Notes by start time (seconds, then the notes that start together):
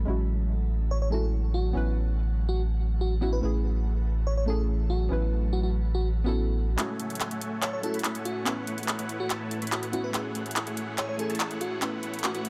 Already playing: F#3
0.05 A1 D3 G#3 C#4 E4
0.09 F#4
0.91 C#5
1.02 C#5
1.10 G#3 C#4 E4 A4
1.14 F#4
1.54 F#4
1.73 A1 C#3 A3 B3 C#4 E4
1.77 B4
2.49 F#4
3.01 F#4
3.21 B3 C#4 E4 F#4
3.33 B4
3.41 A1 E3 F#3 A3 C#4 E4 G#4 B4
4.27 C#5
4.37 C#5
4.46 A3 C#4 E4 A4
4.50 G#4
4.90 F#4
5.09 A1 C#3 B3 C#4 E4
5.13 B4
5.53 F#4
5.63 F#4
5.95 F#4
6.24 B3 C#4 E4 F#4
6.28 A4
6.76 A2 G#3 A3 C#4 E4 F#4 G#4 A4 C#5 E5 F#5 G#5, clap, closed hi-hat
6.80 F#4
6.99 A3 A4 C#5 E5 F#5 G#5, closed hi-hat
7.10 closed hi-hat
7.15 closed hi-hat
7.20 clap, closed hi-hat
7.31 A3 A4 C#5 E5 F#5 G#5, closed hi-hat
7.41 closed hi-hat
7.62 A3 A4 C#5 E5 F#5 A5, clap, closed hi-hat
7.73 C#5
7.81 G#3 C#4 E4 A4, closed hi-hat
7.85 F#4
7.94 A3 A4 C#5 E5 F#5 B5, closed hi-hat
7.99 closed hi-hat
8.04 clap, closed hi-hat
8.15 A3 A4 C#5 E5 F#5 G#5, closed hi-hat
8.25 F#4, closed hi-hat
8.44 A3 B3 C#4 E4 B4 C#5 F#5, clap, closed hi-hat
8.67 A3 E4 B4 C#5 F#5, closed hi-hat
8.78 closed hi-hat
8.83 closed hi-hat
8.88 clap, closed hi-hat
8.99 A3 E4 B4 C#5 F#5, closed hi-hat
9.09 closed hi-hat
9.20 F#4
9.30 A3 E4 B4 C#5 A5, clap, closed hi-hat
9.51 closed hi-hat
9.62 A3 E4 B4 C#5 B5, closed hi-hat
9.67 closed hi-hat
9.72 F#4, clap, closed hi-hat
9.83 A3 E4 B4 C#5 F#5, closed hi-hat
9.92 B3 C#4 E4 F#4, closed hi-hat
10.04 B4
10.12 E3 A3 C#4 E4 G#4 B4 C#5 F#5, clap, closed hi-hat
10.35 A3 E4 G#4 C#5 F#5, closed hi-hat
10.46 closed hi-hat
10.51 closed hi-hat
10.56 clap, closed hi-hat
10.67 A3 E4 G#4 C#5 F#5, closed hi-hat
10.77 closed hi-hat
10.98 A3 E4 G#4 C#5 G#5, clap, closed hi-hat
11.09 C#5
11.17 A3 C#4 E4 A4, closed hi-hat
11.21 G#4
11.30 A3 E4 G#4 C#5 A5, closed hi-hat
11.35 closed hi-hat
11.40 clap, closed hi-hat
11.51 A3 E4 G#4 C#5 F#5, closed hi-hat
11.61 F#4, closed hi-hat
11.80 A2 A3 B3 C#4 E4 F#4 B4 C#5 F#5, clap, closed hi-hat
12.03 A3 E4 B4 C#5 F#5, closed hi-hat
12.14 closed hi-hat
12.19 closed hi-hat
12.24 F#4, clap, closed hi-hat
12.35 A3 E4 F#4 B4 C#5 F#5, closed hi-hat
12.45 closed hi-hat